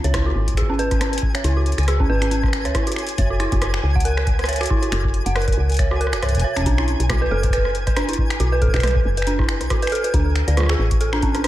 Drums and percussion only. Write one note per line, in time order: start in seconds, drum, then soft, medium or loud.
0.04 closed hi-hat soft
0.14 finger snap medium
0.14 kick loud
0.14 cross-stick loud
0.14 closed hi-hat medium
0.48 kick soft
0.48 closed hi-hat medium
0.54 finger snap medium
0.54 kick medium
0.54 closed hi-hat medium
0.61 kick medium
0.79 closed hi-hat soft
0.91 kick loud
0.91 cross-stick medium
0.91 closed hi-hat medium
1.01 finger snap medium
1.01 cross-stick loud
1.01 closed hi-hat medium
1.13 closed hi-hat medium
1.18 closed hi-hat medium
1.23 kick loud
1.35 finger snap medium
1.35 closed hi-hat medium
1.44 closed hi-hat medium
1.66 closed hi-hat soft
1.72 closed hi-hat soft
1.78 finger snap soft
1.78 closed hi-hat medium
1.83 closed hi-hat soft
1.88 cross-stick loud
1.88 closed hi-hat medium
2.00 kick loud
2.22 finger snap medium
2.22 closed hi-hat medium
2.31 closed hi-hat medium
2.43 kick loud
2.43 cross-stick medium
2.46 cross-stick soft
2.48 cross-stick soft
2.51 finger snap medium
2.51 cross-stick soft
2.53 cross-stick soft
2.53 closed hi-hat soft
2.56 cross-stick soft
2.59 cross-stick soft
2.62 cross-stick soft
2.65 cross-stick medium
2.65 closed hi-hat medium
2.75 kick loud
2.75 cross-stick loud
2.75 closed hi-hat medium
2.87 closed hi-hat medium
2.92 closed hi-hat medium
2.96 finger snap medium
2.96 closed hi-hat medium
3.07 closed hi-hat soft
3.09 closed hi-hat medium
3.18 kick loud
3.18 closed hi-hat medium
3.40 finger snap soft
3.40 closed hi-hat soft
3.52 kick loud
3.52 closed hi-hat soft
3.62 cross-stick loud
3.62 closed hi-hat medium
3.74 finger snap medium
3.96 kick loud
4.00 closed hi-hat medium
4.05 closed hi-hat medium
4.17 finger snap soft
4.17 cross-stick medium
4.27 kick loud
4.27 closed hi-hat soft
4.39 cross-stick medium
4.39 closed hi-hat soft
4.44 cross-stick loud
4.44 closed hi-hat soft
4.49 closed hi-hat medium
4.53 closed hi-hat soft
4.56 closed hi-hat medium
4.61 finger snap soft
4.61 closed hi-hat soft
4.63 closed hi-hat soft
4.66 closed hi-hat medium
4.67 kick loud
4.67 closed hi-hat soft
4.83 closed hi-hat medium
4.92 finger snap medium
4.92 closed hi-hat medium
5.04 kick loud
5.14 closed hi-hat soft
5.26 closed hi-hat soft
5.36 finger snap soft
5.36 cross-stick loud
5.36 closed hi-hat soft
5.42 closed hi-hat soft
5.48 kick loud
5.48 closed hi-hat soft
5.52 closed hi-hat medium
5.69 closed hi-hat soft
5.72 closed hi-hat soft
5.74 closed hi-hat soft
5.77 finger snap soft
5.77 kick loud
5.77 closed hi-hat soft
5.79 closed hi-hat medium
5.91 cross-stick medium
6.01 closed hi-hat soft
6.07 cross-stick medium
6.13 finger snap medium
6.13 closed hi-hat soft
6.23 kick medium
6.23 cross-stick loud
6.23 closed hi-hat medium
6.26 kick medium
6.26 closed hi-hat soft
6.29 kick medium
6.32 kick medium
6.32 closed hi-hat soft
6.35 kick medium
6.37 kick medium
6.39 kick medium
6.39 closed hi-hat medium
6.42 kick loud
6.56 finger snap soft
6.56 kick soft
6.56 closed hi-hat soft
6.59 kick medium
6.61 kick medium
6.64 kick medium
6.66 kick loud
6.66 closed hi-hat medium
6.78 finger snap medium
6.88 closed hi-hat soft
7.00 closed hi-hat soft
7.10 finger snap medium
7.10 kick loud
7.10 cross-stick loud
7.10 closed hi-hat medium
7.10 mid tom medium
7.43 kick loud
7.43 closed hi-hat medium
7.50 finger snap soft
7.50 kick medium
7.50 closed hi-hat medium
7.57 kick medium
7.65 cross-stick medium
7.75 closed hi-hat soft
7.87 kick loud
7.87 cross-stick medium
7.87 closed hi-hat soft
7.97 finger snap soft
7.97 cross-stick loud
7.97 closed hi-hat medium
8.09 closed hi-hat soft
8.13 closed hi-hat medium
8.18 kick loud
8.30 finger snap medium
8.30 closed hi-hat soft
8.40 closed hi-hat medium
8.62 kick loud
8.62 closed hi-hat soft
8.68 kick medium
8.74 finger snap soft
8.74 kick medium
8.74 closed hi-hat soft
8.76 finger snap soft
8.76 kick medium
8.80 finger snap soft
8.80 closed hi-hat soft
8.83 finger snap soft
8.83 cross-stick loud
8.83 closed hi-hat medium
8.83 mid tom medium
8.87 finger snap soft
8.87 closed hi-hat soft
8.91 finger snap soft
8.96 kick loud
9.17 closed hi-hat soft
9.22 finger snap medium
9.27 closed hi-hat medium
9.39 kick loud
9.39 cross-stick medium
9.41 cross-stick soft
9.44 cross-stick soft
9.46 finger snap medium
9.46 cross-stick soft
9.46 closed hi-hat soft
9.61 cross-stick medium
9.61 closed hi-hat soft
9.70 kick loud
9.70 cross-stick loud
9.70 closed hi-hat medium
9.82 closed hi-hat soft
9.87 finger snap medium
9.87 closed hi-hat soft
9.90 closed hi-hat soft
9.92 closed hi-hat soft
9.95 closed hi-hat medium
10.04 closed hi-hat soft
10.14 kick loud
10.14 closed hi-hat medium
10.36 finger snap medium
10.36 closed hi-hat soft
10.48 closed hi-hat soft
10.57 cross-stick loud
10.57 closed hi-hat medium
10.57 mid tom medium
10.60 cross-stick medium
10.63 cross-stick medium
10.66 finger snap medium
10.66 cross-stick medium
10.91 kick loud
10.91 closed hi-hat soft
11.01 closed hi-hat medium
11.13 finger snap soft
11.13 cross-stick medium
11.22 kick loud
11.22 closed hi-hat soft
11.35 cross-stick medium
11.35 closed hi-hat soft
11.44 cross-stick loud
11.44 closed hi-hat medium